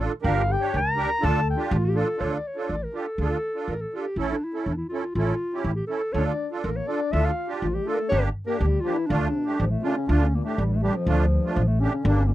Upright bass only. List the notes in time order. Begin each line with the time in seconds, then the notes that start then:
0.24 G1
0.74 C#2
1.23 D2
1.71 A1
2.21 D2
2.69 A1
3.18 D2
3.68 A1
4.16 A1
4.66 E2
5.15 A1
5.64 A1
6.14 D2
6.64 A1
7.13 D2
7.62 A1
8.12 G1
8.61 D2
9.10 D2
9.60 A1
10.09 D2
10.58 A1
11.07 D2
11.56 A1
12.05 G1